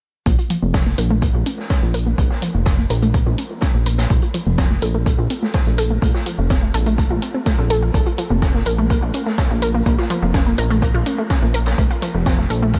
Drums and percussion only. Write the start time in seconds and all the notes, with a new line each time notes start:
0.26 kick, closed hi-hat
0.39 closed hi-hat
0.50 closed hi-hat, open hi-hat
0.74 kick, snare, closed hi-hat
0.86 snare
0.98 closed hi-hat, open hi-hat
1.22 kick, closed hi-hat
1.46 closed hi-hat, open hi-hat
1.59 snare
1.70 kick, snare, closed hi-hat
1.94 closed hi-hat, open hi-hat
2.18 kick, closed hi-hat
2.31 snare
2.42 closed hi-hat, open hi-hat
2.66 kick, snare, closed hi-hat
2.90 closed hi-hat, open hi-hat
3.02 closed hi-hat
3.14 kick, closed hi-hat
3.38 closed hi-hat, open hi-hat
3.61 kick, snare, closed hi-hat
3.86 closed hi-hat, open hi-hat
3.98 snare, closed hi-hat
4.10 kick, closed hi-hat
4.22 closed hi-hat
4.34 closed hi-hat, open hi-hat
4.58 kick, snare, closed hi-hat
4.71 snare
4.82 closed hi-hat, open hi-hat
5.06 kick, closed hi-hat
5.30 closed hi-hat, open hi-hat
5.43 snare
5.54 kick, snare, closed hi-hat
5.78 closed hi-hat, open hi-hat
6.02 kick, closed hi-hat
6.14 snare
6.26 closed hi-hat, open hi-hat
6.50 kick, snare, closed hi-hat
6.74 closed hi-hat, open hi-hat
6.86 closed hi-hat
6.98 kick, closed hi-hat
7.22 closed hi-hat, open hi-hat
7.46 kick, snare, closed hi-hat
7.70 closed hi-hat, open hi-hat
7.94 kick, closed hi-hat
8.06 closed hi-hat
8.18 closed hi-hat, open hi-hat
8.42 kick, snare, closed hi-hat
8.55 snare
8.66 closed hi-hat, open hi-hat
8.90 kick, closed hi-hat
9.14 closed hi-hat, open hi-hat
9.27 snare
9.38 kick, snare, closed hi-hat
9.62 closed hi-hat, open hi-hat
9.86 kick, closed hi-hat
9.98 snare
10.10 closed hi-hat, open hi-hat
10.34 kick, snare, closed hi-hat
10.58 closed hi-hat, open hi-hat
10.70 closed hi-hat
10.82 kick, closed hi-hat
11.06 closed hi-hat, open hi-hat
11.30 kick, snare, closed hi-hat
11.54 closed hi-hat, open hi-hat
11.66 snare, closed hi-hat
11.78 kick, closed hi-hat
11.90 closed hi-hat
12.02 closed hi-hat, open hi-hat
12.26 kick, snare, closed hi-hat
12.38 snare
12.50 closed hi-hat, open hi-hat
12.73 kick, closed hi-hat